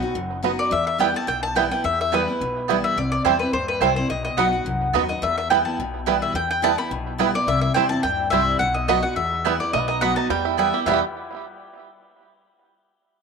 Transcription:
Already playing: steel-string acoustic guitar B2, mandolin F#5
0.02 steel-string acoustic guitar D#4 F#4
0.15 upright bass F#1, steel-string acoustic guitar F#2
0.43 steel-string acoustic guitar F#3 B3 D#4 F#4, five-string banjo B3 D#4
0.59 mandolin D5
0.71 steel-string acoustic guitar E2, upright bass E2, mandolin E5
0.87 mandolin E5
0.98 steel-string acoustic guitar E3 G3 B3 E4, five-string banjo G3 B3 E4, mandolin B3 E4 B4 G5
1.14 steel-string acoustic guitar B3 E4, mandolin A5
1.27 upright bass B1, steel-string acoustic guitar B2, mandolin G5
1.43 mandolin A5
1.55 steel-string acoustic guitar E3 G3 B3 E4, five-string banjo G3 B3 E4, mandolin B3 E4 B4 G5
1.71 steel-string acoustic guitar B3 E4, mandolin G5
1.84 steel-string acoustic guitar E2, upright bass E2, mandolin E5
2.01 mandolin E5
2.12 steel-string acoustic guitar E3 G3 B3 E4, five-string banjo G3 B3 E4, mandolin B3 E4 B4 G5
2.28 steel-string acoustic guitar B3 E4
2.40 upright bass B1, steel-string acoustic guitar B2
2.68 steel-string acoustic guitar E3 G3 B3 E4, five-string banjo G3 B3 E4, mandolin B3 E4 B4 G5
2.84 mandolin E5
2.96 upright bass C2, steel-string acoustic guitar C3, mandolin D5
3.12 mandolin D5
3.24 upright bass E2, steel-string acoustic guitar E3 G3 C4 E4, five-string banjo G3 C4 E4, mandolin C4 E4 C5 G5
3.39 steel-string acoustic guitar C4 E4, mandolin B4
3.52 upright bass D#2, steel-string acoustic guitar G2, mandolin C5
3.68 mandolin B4
3.80 upright bass C2, steel-string acoustic guitar E3 G3 C4 E4, five-string banjo G3 C4 E4, mandolin C4 E4 C5 G5
3.96 steel-string acoustic guitar C4 E4, mandolin C5
4.09 upright bass B1, steel-string acoustic guitar B2, mandolin D#5
4.25 mandolin D#5
4.37 upright bass B1, steel-string acoustic guitar F#3 B3 D#4 F#4, mandolin B3 F#4 D#5 F#5 B5, five-string banjo B3 D#4
4.52 steel-string acoustic guitar D#4 F#4
4.65 upright bass C2, steel-string acoustic guitar F#2
4.93 upright bass D#2, steel-string acoustic guitar F#3 B3 D#4 F#4, mandolin B3 F#4 D#5 B5, five-string banjo B3 D#4
5.08 steel-string acoustic guitar D#4 F#4, mandolin D#5
5.22 upright bass E2, steel-string acoustic guitar E2, mandolin E5
5.38 mandolin E5
5.50 steel-string acoustic guitar E3 G3 B3 E4, five-string banjo G3 B3 E4, mandolin B3 E4 B4 G5
5.65 steel-string acoustic guitar B3 E4, mandolin A5
5.78 upright bass B1, steel-string acoustic guitar B2
6.06 steel-string acoustic guitar E3 G3 B3 E4, five-string banjo G3 B3 E4, mandolin B3 E4 B4 G5
6.22 mandolin E5
6.34 upright bass E2, steel-string acoustic guitar E2, mandolin G5
6.51 mandolin G5
6.62 steel-string acoustic guitar E3 G3 B3 E4, five-string banjo G3 B3 E4, mandolin B3 E4 B4 G5 A5
6.78 steel-string acoustic guitar B3 E4, mandolin B5
6.90 upright bass B1, steel-string acoustic guitar B2
7.18 steel-string acoustic guitar E3 G3 B3 E4, five-string banjo G3 B3 E4, mandolin B3 E4 B4 G5
7.34 steel-string acoustic guitar B3 E4, mandolin D5
7.47 upright bass C2, steel-string acoustic guitar C3, mandolin E5
7.61 mandolin E5
7.74 steel-string acoustic guitar E3 G3 C4 E4, five-string banjo G3 C4 E4, mandolin C4 E4 C5 G5
7.89 steel-string acoustic guitar C4 E4, mandolin A5
8.03 upright bass D#2, steel-string acoustic guitar G2, mandolin G5
8.30 upright bass C2, steel-string acoustic guitar E3 G3 C4 E4, five-string banjo G3 C4 E4, mandolin C4 E4 C5 E5 G5
8.59 upright bass B1, steel-string acoustic guitar B2, mandolin F#5
8.74 mandolin D#5
8.88 steel-string acoustic guitar F#3 B3 D#4 F#4, mandolin B3 F#4 D#5 B5, five-string banjo B3 D#4
9.02 steel-string acoustic guitar D#4 F#4, mandolin F#5
9.16 steel-string acoustic guitar E2, upright bass E2, mandolin E5
9.45 steel-string acoustic guitar E3 G3 B3 E4, five-string banjo G3 B3 E4, mandolin B3 E4 B4 G5
9.60 steel-string acoustic guitar B3 E4, mandolin D5
9.73 upright bass B1, steel-string acoustic guitar B2, five-string banjo A3, mandolin D#5
9.80 five-string banjo B3
9.88 five-string banjo D#4, mandolin D#5
10.01 steel-string acoustic guitar F#3 B3 D#4 F#4, mandolin B3 F#4 D#5 F#5 B5, five-string banjo B3
10.16 five-string banjo D#4, mandolin A5
10.29 upright bass E2, steel-string acoustic guitar E2, five-string banjo G3, mandolin G5
10.45 five-string banjo E4
10.57 steel-string acoustic guitar E3 G3 B3 E4, five-string banjo G3, mandolin B3 E4 B4 E5 G5
10.73 steel-string acoustic guitar B3 E4, five-string banjo G4
10.86 upright bass E2, steel-string acoustic guitar E2 B2 E3 G3 B3 E4, five-string banjo G3 B3, mandolin B3 E4 B4 E5 G5
10.92 five-string banjo E4 G4

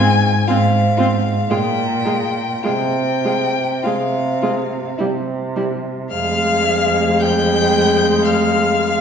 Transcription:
Already playing: cello G#2, violin G#5
0.01 viola C4
0.47 cello G#2, viola C4, violin F4 F5
0.97 viola C4, violin F4
1.50 cello A#2, viola G#3, violin F4 G5
2.05 viola G#3, violin F4
2.63 cello C3, viola G#3, violin F4 G5
3.24 viola G#3, violin F4
3.83 cello C3, viola G#3, violin F4 F5
4.42 viola G#3, violin F4
4.98 cello C3, viola G3, violin E4
5.56 viola G3, violin E4
6.11 cello F2, viola G#3, violin F5 F6
7.21 violin G5 G6
8.25 violin F5 F6

